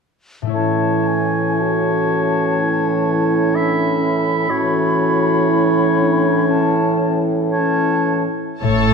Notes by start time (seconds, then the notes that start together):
0.42 A2 A3
0.47 E4 C#5
0.53 A2 E3 C#4 E4 C#5 A5
1.07 G#5
1.59 F#4 A5
2.60 E4
3.54 D4 E5 B5
4.02 C#4
4.49 A2 E3 C#4 F#4 C#5
5.49 E4
6.00 D4
6.48 C#4 A5
7.52 C#4 C#5 A5
8.62 A1 A2 A4 C#5 A5